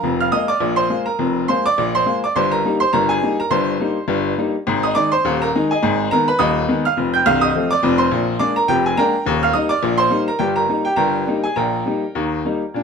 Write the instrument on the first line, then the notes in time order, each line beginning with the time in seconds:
upright piano
Already playing: A#4 F5 A#5
0.03 F1 F2
0.20 F5 F6
0.32 G#3 A#3 F4 D#5 D#6
0.48 D5 D6
0.60 A#1 A#2
0.76 C5 C6
0.90 G#3 A#3 F4
1.06 A#4 A#5
1.19 F1 F2
1.48 G#3 A#3 F4 C5 C6
1.66 D5 D6
1.78 A#1 A#2
1.95 C5 C6
2.06 G#3 A#3 F4
2.24 D5 D6
2.36 G1 G2 C5 C6
2.52 A#4 A#5
2.65 G3 A#3 D#4
2.80 C5 C6
2.93 G1 G2 A#4 A#5
3.09 G#4 G#5
3.22 G3 A#3 D#4
3.40 A#4 A#5
3.51 G1 G2 C5 C6
3.80 G3 A#3 D#4
4.08 G1 G2
4.38 G3 A#3 D#4
4.67 G#1 G#2
4.83 D#5 D#6
4.95 D#3 G#3 D#4 D5 D6
5.12 C5 C6
5.25 D#1 D#2
5.42 A#4 A#5
5.55 D#3 G#3 D#4
5.71 G#4 D#5 G#5
5.83 G#1 G#2
6.11 D#3 G#3 B3 A#4 A#5
6.28 B4 B5
6.39 D#1 D#2 D#5 B5 D#6
6.68 D#3 G#3 B3
6.85 F5 F6
6.97 F1 F2
7.14 G5 G6
7.26 C1 C2 F5 F6
7.41 D#5 D#6
7.56 F3 A3 C4
7.71 D5 D6
7.83 F1 F2
7.98 C5 C6
8.11 A#1 A#2
8.39 G#3 A#3 D4 D5 D6
8.56 A#4 A#5
8.68 F1 F2 G4 G5
8.86 G#4 G#5
8.97 G#3 A#3 D4 A#4 G5 A#5
9.26 D#1 D#2
9.43 F5 F6
9.53 G3 A#3 D#4 D#5 D#6
9.69 D5 D6
9.82 A#1 A#2
9.98 C5 C6
10.10 G3 A#3 D#4
10.28 A#4 A#5
10.39 G1 G2 G4 G5
10.56 A#4 A#5
10.69 G3 A#3 D#4
10.85 G4 G5
10.96 G1 G2 A#4 G5 A#5
11.27 G3 A#3 D#4
11.44 G#4 G#5
11.56 A#1 A#2 A#4 G5 A#5
11.86 G3 A#3 D#4
12.15 D#2 D#3
12.45 G3 A#3 D#4
12.74 A#2 D4